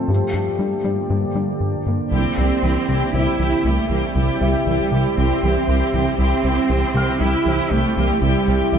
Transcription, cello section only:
0.09 G2
0.35 G2
0.60 G2
0.85 G2
1.10 G2
1.36 G2
1.87 G2
2.13 C4
3.14 E4
3.65 A3
3.90 A#3
4.04 A3
4.16 G3
4.67 G3
5.18 C4
6.19 C4
7.20 E4
7.72 A3
7.97 A#3
8.11 A3
8.22 G3
8.73 G3

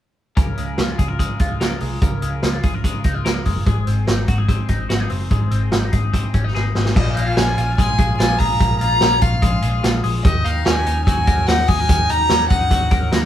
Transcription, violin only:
6.97 D#5
7.17 F5
7.37 G#5
7.78 G#5
8.18 G#5
8.38 A#5
8.80 A#5
9.22 F5
10.24 D#5
10.45 F5
10.65 G#5
11.06 G#5
11.47 F#5
11.68 G#5
12.10 A#5
12.50 F#5

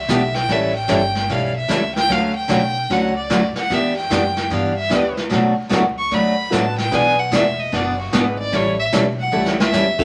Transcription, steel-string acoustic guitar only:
0.09 E3 B3 D4 G4
0.49 E3 G3 C#4 E4 A4
0.88 E3 G3 C#4 E4 A4
1.30 E3 G3 C#4 E4 A4
1.68 E3 G3 C#4 E4 A4
2.09 D3 F#3 A3 C#4 F#4
2.48 D3 F#3 A3 C#4 F#4
2.90 D3 F#3 A3 C#4 F#4
3.30 D3 F#3 A3 C#4 F#4
3.70 E3 B3 D4 G4
4.10 E3 B3 D4 G4
4.50 E3 B3 D4 G4
4.90 E3 B3 D4 G4
5.29 B2 F#3 A3 D4 F#4
5.69 B2 F#3 A3 D4 F#4
6.11 B2 F#3 A3 D4 F#4
6.52 B2 F#3 A3 D4 F#4
6.91 B2 E3 B3 D4 G#4
7.31 B2 E3 B3 D4 G#4
7.72 B2 E3 B3 D4 G#4
8.13 B2 E3 B3 D4 G#4
8.52 E3 G3 C#4 E4 A4
8.92 E3 G3 C#4 E4 A4
9.32 E3 G3 C#4 E4 A4
9.73 E3 G3 C#4 E4 A4

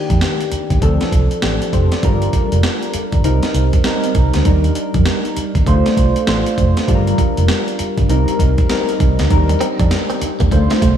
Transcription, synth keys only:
Already playing: D#3 A#3 D4 G4
0.81 E3 C4 D4 A4
0.88 F3
1.43 D4 G4
1.62 D4 A4
1.74 G4 C5
1.92 A4 D5
2.04 G3 D4 F4 A#4
3.24 G3 C4 D#4 A#4
3.85 G3 C4 D#4 A#4
4.45 G3 D4 D#4 A#4
5.66 A3 D4 F4 C5
6.27 A3 D4 F4 C5
6.88 G3 D4 F4 A4
6.95 A#4
8.09 G3 C4 D#4 A#4
8.70 G3 C4 D#4 A#4
9.30 F#3 D4 D#4 A#4
9.37 G3
10.51 A3 D4 F4 C5

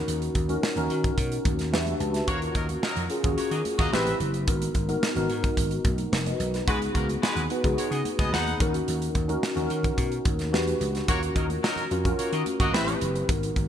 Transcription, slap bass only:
0.08 D#2
0.35 D#2
0.77 D#2
0.91 D#3
1.18 B2
1.46 D#2
1.73 E2
2.00 C#2
2.28 D#2
2.55 D#2
2.97 F2
3.24 D#2
3.37 muted slap bass stroke
3.51 D#3
3.79 D#2
3.93 A1
4.20 F#1
4.48 G#1
4.75 G#1
5.16 G#1
5.30 G#2
5.57 G#1
5.85 B1
6.12 F1
6.40 B1
6.68 C#2
6.95 C#2
7.36 D#2
7.64 C#2
7.78 muted slap bass stroke
7.91 C#3
8.19 C#2
8.33 D#2
8.60 D#2
8.88 D#2
9.15 D#2
9.57 D#2
9.71 D#3
9.98 B2
10.26 D#2
10.53 E2
10.80 C#2
11.09 D#2
11.36 D#2
11.91 F2
12.19 muted slap bass stroke
12.32 D#3
12.60 D#2
12.74 A1
13.02 F#1
13.29 G#1
13.56 G#1

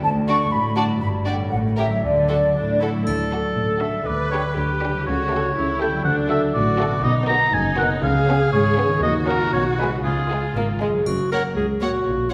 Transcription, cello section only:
0.03 D2
0.52 A2
1.01 G2
1.51 A2
2.03 D3
2.55 A2
3.07 D3
3.57 A2
4.06 D3
4.57 D3
5.06 C#3
5.56 C#3
6.06 D3
6.55 A2
7.05 B2
7.54 F#2
8.04 C#3
8.53 G#2
9.03 D#3
9.53 B2
10.04 C#3
10.55 G#2
11.06 F#2
11.57 C#2
12.06 A#2

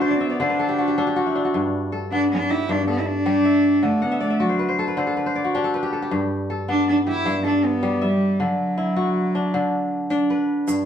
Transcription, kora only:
Already playing: D3 F#4 D5 E5 F#5 A5
0.01 C5
0.11 D5
0.21 E5
0.30 D5
0.40 D3 C5
0.49 B4
0.59 A4
0.69 G4
0.78 F#4
0.88 G4
0.98 D4 A4
1.07 G4
1.16 F#4
1.26 E4
1.35 D4
1.45 F#4
1.54 G2
1.92 A4
2.12 B3
2.50 G4
2.69 G2
2.88 A4
3.26 G3 G4
3.45 E5
3.83 D3
4.02 F#5
4.12 E5
4.20 D5
4.30 E5
4.40 F#4 D5
4.49 C5
4.59 B4
4.69 C5
4.79 A4
4.88 B4
4.97 D3 C5
5.07 A4
5.17 B4
5.26 C5
5.35 D5
5.44 F#4
5.55 D4 G4
5.64 A4
5.74 B4
5.83 G4
5.93 A4
6.02 G4
6.11 G2
6.50 A4
6.68 B3
7.07 G4
7.26 G2
7.44 A4
7.83 G3
8.02 E5
8.40 D3
8.78 E4
8.96 F#4
9.35 D4
9.54 D3
10.10 D4
10.30 B4
10.68 G2

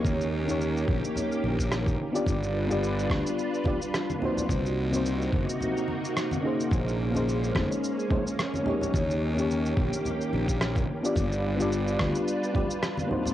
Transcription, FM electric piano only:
Already playing: A#3 C#4 D#4 G4 C#5
0.45 A#3 C#4 D#4
0.50 G4 C#5
2.12 B3 D4 F4 G4 D5
2.66 B3 D4 F4
2.71 G4 D5
3.64 B3 D4 F4 G4 D5
4.19 A#3 C4 D#4
4.23 F#4 C5
4.90 A#3 C4 D#4
4.95 F#4 C5
6.41 A#3 C#4 D#4
6.45 G#4 C5
7.11 A#3 C#4 D#4
7.15 G#4 C5
8.08 A#3 C#4 D#4 G#4 C5
8.63 A#3 C#4 D#4
8.67 G4 C#5
9.35 A#3 C#4 D#4
9.39 G4 C#5
11.03 B3 D4 F4 G4 D5
11.56 B3 D4 F4
11.61 G4 D5
12.53 B3 D4 F4 G4 D5
13.07 A#3 C4 D#4
13.11 F#4 C5

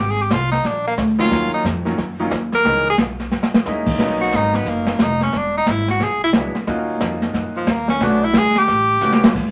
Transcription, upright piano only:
1.18 D#3 F#3 A#3 C#4 F4
1.85 D#3 F#3 A#3 C#4 F4
2.20 D#3 F#3 A#3 C#4 F4
2.65 E3 G#3 B3 C#4 D#4
3.67 G#3 A#3 C#4 D#4 E4
4.00 F#3 A#3 B3 C#4 D#4
6.35 F#3 G#3 B3 D4 E4
6.67 A#3 C#4 D#4 F4 F#4
8.01 A3 B3 C#4 D4 F#4
9.02 A3 B3 C#4 E4 F#4

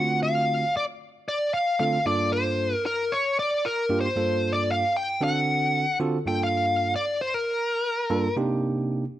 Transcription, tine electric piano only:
Already playing: D3 A3 C4 F4 F#4
1.80 D3 A3 C4 F4 A4
2.06 G2 A#3 D4 F4 A4
3.89 G2 A#3 D4 F4 G4
4.16 G2 A#3 D4 F4 A4
5.21 D3 C4 D4 F#4 A4
6.00 D3 C4 F4 F#4 A4
6.26 G2 A#3 D4 F4 A4
8.10 G2 A#3 D4 F4 A4
8.36 C3 A#3 D4 D#4 G4

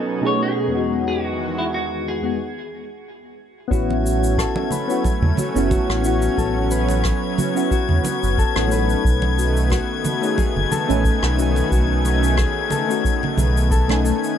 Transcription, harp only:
3.71 F#4
4.38 A4
4.71 B4
5.38 F#4
5.71 F#4
6.38 A4
6.71 B4
7.38 F#4
7.71 F#4
8.38 A4
8.72 B4
9.38 F#4
9.71 F#4
10.38 G#4
10.71 A4
11.38 F#4
11.72 F#4
12.38 G#4
12.71 A4
13.38 G#4
13.71 A4
14.04 A4

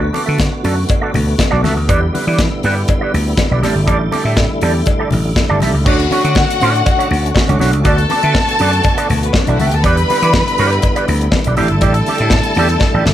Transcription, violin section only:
5.86 F#4 F#5
7.84 A4 A5
9.25 B3 B4
9.33 C#4 C#5
9.43 D4 D5
9.49 E4 E5
9.57 F#4 F#5
9.66 G4 G5
9.74 A4 A5
9.82 B4 B5
11.57 A4 A5

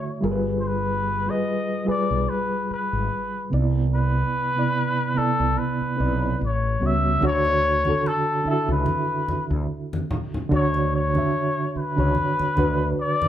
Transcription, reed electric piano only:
Already playing: D3 A3 E4 F#4 C#5 D5 E5
0.21 G3 F4 G#4
0.25 A#4
0.31 B4
1.26 G3 F4 G#4
1.31 B4
1.85 G3 F4 G#4
1.89 B4
3.50 C3 B3 D#4
3.54 D5
3.59 E4
4.55 C3 B3 E4
4.59 D5
5.14 C3 B3 E4
5.18 D5
5.97 C4 E4 B4
6.01 D5
6.79 A2 G3 B3 F#4 C#5
7.21 D3 D4 F#4
7.25 C#5
7.85 D3 D4 F#4
7.89 A4
8.43 D3 D4 E4
8.48 E5
8.52 F#4
10.49 D3 D4 F#4
10.54 C#5
11.14 D3 D4 F#4
11.18 E5
11.96 D3 D4 F#4
12.00 C#5
12.55 D3 D4 F#4
12.59 B4

